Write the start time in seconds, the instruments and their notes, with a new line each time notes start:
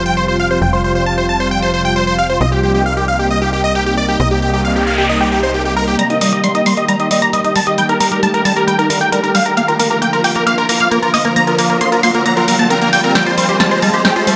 Already playing: analog synth bass F1
0.06 supersaw synth G5
0.17 supersaw synth C5
0.28 supersaw synth C5
0.40 supersaw synth F5
0.51 supersaw synth C5
0.62 analog synth bass F1, supersaw synth G5
0.73 supersaw synth C5
0.84 supersaw synth C5
0.95 supersaw synth C5
1.06 supersaw synth A5
1.18 supersaw synth C5
1.29 supersaw synth A5
1.40 supersaw synth C5
1.51 supersaw synth G5
1.62 supersaw synth C5
1.74 supersaw synth C5
1.85 supersaw synth G5
1.96 supersaw synth C5
2.07 supersaw synth C5
2.18 supersaw synth F5
2.29 supersaw synth C5
2.41 analog synth bass C2, supersaw synth D#5
2.52 supersaw synth G4
2.63 supersaw synth G4
2.74 supersaw synth G4
2.86 supersaw synth F5
2.97 supersaw synth G4
3.08 supersaw synth F5
3.19 supersaw synth G4
3.30 supersaw synth D#5
3.42 supersaw synth G4
3.53 supersaw synth G4
3.64 supersaw synth D#5
3.75 supersaw synth G4
3.86 supersaw synth G4
3.97 supersaw synth D5
4.09 supersaw synth G4
4.20 analog synth bass C2, supersaw synth D#5, noise sweep
4.31 supersaw synth G4
4.42 supersaw synth G4
4.53 supersaw synth G4
4.65 supersaw synth F5
4.76 supersaw synth G4
4.87 supersaw synth F5
4.98 supersaw synth G4
5.09 supersaw synth D#5
5.21 supersaw synth G4
5.32 supersaw synth G4
5.43 supersaw synth C5
5.54 supersaw synth G4
5.65 supersaw synth G4
5.77 supersaw synth A#4
5.88 supersaw synth G4
5.99 acid bass G3, supersaw synth A#5, synth pluck A#6, closed hi-hat, riser
6.10 acid bass D#4, supersaw synth D#5, synth pluck D#6, closed hi-hat
6.21 acid bass G3, supersaw synth D#5, synth pluck D#6, open hi-hat
6.32 acid bass G4, supersaw synth D#5, synth pluck D#6, closed hi-hat
6.44 acid bass G3, supersaw synth C6, synth pluck C7, closed hi-hat
6.55 acid bass D#4, supersaw synth D#5, synth pluck D#6, closed hi-hat
6.66 acid bass G3, supersaw synth C6, synth pluck C7, open hi-hat
6.77 acid bass G4, supersaw synth D#5, synth pluck D#6, closed hi-hat
6.88 acid bass G3, supersaw synth A#5, synth pluck A#6, closed hi-hat
7.00 acid bass D#4, supersaw synth D#5, synth pluck D#6, closed hi-hat
7.11 acid bass G3, supersaw synth D#5, synth pluck D#6, open hi-hat
7.22 acid bass G4, supersaw synth A#5, synth pluck A#6, closed hi-hat
7.33 acid bass G3, supersaw synth D#5, synth pluck D#6, closed hi-hat
7.44 acid bass D#4, supersaw synth D#5, synth pluck D#6, closed hi-hat
7.56 acid bass G3, supersaw synth A5, synth pluck A6, open hi-hat
7.67 acid bass G4, supersaw synth D#5, synth pluck D#6, closed hi-hat
7.78 acid bass G3, supersaw synth G5, synth pluck G6, closed hi-hat
7.89 acid bass D#4, supersaw synth A#4, synth pluck A#5, closed hi-hat
8.00 acid bass G3, supersaw synth A#4, synth pluck A#5, open hi-hat
8.11 acid bass G4, supersaw synth A#4, synth pluck A#5, closed hi-hat
8.23 acid bass G3, supersaw synth A5, synth pluck A6, closed hi-hat
8.34 acid bass D#4, supersaw synth A#4, synth pluck A#5, closed hi-hat
8.45 acid bass G3, supersaw synth A5, synth pluck A6, open hi-hat
8.56 acid bass G4, supersaw synth A#4, synth pluck A#5, closed hi-hat
8.67 acid bass G3, supersaw synth G5, synth pluck G6, closed hi-hat
8.78 acid bass D#4, supersaw synth A#4, synth pluck A#5, closed hi-hat
8.90 acid bass G3, supersaw synth A#4, synth pluck A#5, open hi-hat
9.01 acid bass G4, supersaw synth G5, synth pluck G6, closed hi-hat
9.12 acid bass G3, supersaw synth A#4, synth pluck A#5, closed hi-hat
9.23 acid bass D#4, supersaw synth A#4, synth pluck A#5, closed hi-hat
9.34 acid bass G3, supersaw synth F5, synth pluck F6, open hi-hat
9.46 acid bass G4, supersaw synth A#4, synth pluck A#5, closed hi-hat
9.57 acid bass A#3, supersaw synth F5, synth pluck F6, closed hi-hat
9.68 acid bass F4, supersaw synth A#4, synth pluck A#5, closed hi-hat
9.79 acid bass A#3, supersaw synth A#4, synth pluck A#5, open hi-hat
9.90 acid bass A#3, supersaw synth A#4, synth pluck A#5, closed hi-hat
10.02 acid bass A#3, supersaw synth G5, synth pluck G6, closed hi-hat
10.13 acid bass F4, supersaw synth A#4, synth pluck A#5, closed hi-hat
10.24 acid bass A#3, supersaw synth G5, synth pluck G6, open hi-hat
10.35 acid bass A#3, supersaw synth A#4, synth pluck A#5, closed hi-hat
10.46 acid bass A#3, supersaw synth F5, synth pluck F6, closed hi-hat
10.58 acid bass F4, supersaw synth A#4, synth pluck A#5, closed hi-hat
10.69 acid bass A#3, supersaw synth A#4, synth pluck A#5, open hi-hat
10.80 acid bass A#3, supersaw synth F5, synth pluck F6, closed hi-hat
10.91 acid bass A#3, supersaw synth A#4, synth pluck A#5, closed hi-hat
11.02 acid bass F4, supersaw synth A#4, synth pluck A#5, closed hi-hat
11.14 acid bass A#3, supersaw synth D#5, synth pluck D#6, open hi-hat
11.25 acid bass A#3, supersaw synth A#4, synth pluck A#5, closed hi-hat
11.36 acid bass A#3, supersaw synth A#5, synth pluck A#6, closed hi-hat
11.47 acid bass F4, supersaw synth A#4, synth pluck A#5, closed hi-hat
11.58 acid bass A#3, supersaw synth A#4, synth pluck A#5, open hi-hat
11.70 acid bass A#3, supersaw synth A#4, synth pluck A#5, closed hi-hat
11.81 acid bass A#3, supersaw synth C6, synth pluck C7, closed hi-hat
11.92 acid bass F4, supersaw synth A#4, synth pluck A#5, closed hi-hat
12.03 acid bass A#3, supersaw synth C6, synth pluck C7, open hi-hat
12.14 acid bass A#3, supersaw synth A#4, synth pluck A#5, closed hi-hat
12.26 acid bass A#3, supersaw synth A#5, synth pluck A#6, closed hi-hat
12.37 acid bass F4, supersaw synth A#4, synth pluck A#5, closed hi-hat
12.48 acid bass A#3, supersaw synth A#4, synth pluck A#5, open hi-hat
12.59 acid bass A#3, supersaw synth A5, synth pluck A6, closed hi-hat
12.70 acid bass C4, supersaw synth A#4, synth pluck A#5, closed hi-hat
12.81 acid bass A#3, supersaw synth A#4, synth pluck A#5, closed hi-hat
12.93 acid bass A#3, supersaw synth G5, synth pluck G6, open hi-hat
13.04 acid bass C4, supersaw synth A#4, synth pluck A#5, closed hi-hat
13.15 acid bass G3, supersaw synth G5, synth pluck G6, snare, closed hi-hat
13.26 acid bass F4, supersaw synth C5, synth pluck C6, closed hi-hat
13.37 acid bass G3, supersaw synth C5, synth pluck C6, open hi-hat
13.49 acid bass G4, supersaw synth C5, synth pluck C6, closed hi-hat
13.60 acid bass G3, supersaw synth A5, synth pluck A6, snare, closed hi-hat
13.71 acid bass F4, supersaw synth C5, synth pluck C6, closed hi-hat
13.82 acid bass G3, supersaw synth A5, synth pluck A6, open hi-hat
13.94 acid bass G4, supersaw synth C5, synth pluck C6, closed hi-hat
14.05 acid bass G3, supersaw synth G5, synth pluck G6, snare, closed hi-hat
14.16 acid bass F4, supersaw synth C5, synth pluck C6, closed hi-hat
14.27 acid bass G3, supersaw synth C5, synth pluck C6, open hi-hat